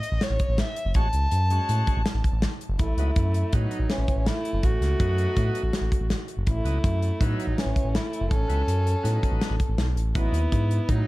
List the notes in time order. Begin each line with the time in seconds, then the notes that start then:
Already playing: D#5
0.03 closed hi-hat
0.12 A1
0.21 C#5, snare, closed hi-hat
0.30 A1
0.39 kick, closed hi-hat
0.49 A1
0.58 E5, snare, closed hi-hat
0.76 closed hi-hat
0.85 F#1
0.94 A1 G#3 C#4 F#4 A5, kick, closed hi-hat
1.13 C#2, closed hi-hat
1.31 F#2, closed hi-hat
1.50 G#3 C#4 F#4, closed hi-hat
1.69 A2, closed hi-hat
1.87 kick, closed hi-hat
1.97 A1
2.06 snare, closed hi-hat
2.14 A1
2.24 kick, closed hi-hat
2.32 A1
2.42 snare, closed hi-hat
2.61 closed hi-hat
2.69 F#1
2.78 A1 A3 E4, kick, closed hi-hat
2.97 C#2 F#3 B3 D#4, closed hi-hat
3.16 F#2, kick, closed hi-hat
3.34 closed hi-hat
3.53 A2 F#3 B3 D#4, kick, closed hi-hat
3.71 closed hi-hat
3.79 A1
3.90 E3 C#4, snare, closed hi-hat
3.98 A1
4.08 kick, closed hi-hat
4.16 A1
4.26 A3 E4, snare, closed hi-hat
4.45 closed hi-hat
4.53 F#1
4.63 A1 A3 F#4, kick, closed hi-hat
4.80 C#2, snare, closed hi-hat
5.00 F#2 F#3 B3 D#4, kick, closed hi-hat
5.18 closed hi-hat
5.36 A2 F#3 B3 D#4, kick, closed hi-hat
5.55 closed hi-hat
5.63 A1
5.73 snare, closed hi-hat
5.81 A1
5.92 kick, closed hi-hat
6.00 A1
6.10 snare, closed hi-hat
6.28 closed hi-hat
6.37 F#1
6.47 A1 A3 E4, kick, closed hi-hat
6.64 C#2 F#3 B3 D#4, closed hi-hat
6.84 F#2, kick, closed hi-hat
7.02 closed hi-hat
7.21 A2 F#3 B3 D#4 E4, kick, closed hi-hat
7.40 closed hi-hat
7.47 A1
7.58 E3 C#4, snare, closed hi-hat
7.65 A1
7.76 kick, closed hi-hat
7.84 A1
7.94 A3 E4, snare, closed hi-hat
8.13 closed hi-hat
8.21 F#1
8.31 A1 C#4 A4, kick, closed hi-hat
8.48 C#2 F#3 B3 E4, closed hi-hat
8.67 F#2, closed hi-hat
8.87 closed hi-hat
9.03 A2 F#3 B3 D#4, snare, closed hi-hat
9.23 kick, closed hi-hat
9.32 A1
9.41 snare, closed hi-hat
9.50 A1
9.60 kick, closed hi-hat
9.69 A1
9.77 B1, snare, closed hi-hat
9.96 A1, closed hi-hat
10.15 A1 F#3 B3 D#4 E4, kick, closed hi-hat
10.32 D#2, closed hi-hat
10.52 G#2, kick, closed hi-hat
10.71 closed hi-hat
10.89 A2 F#3 D#4, kick, closed hi-hat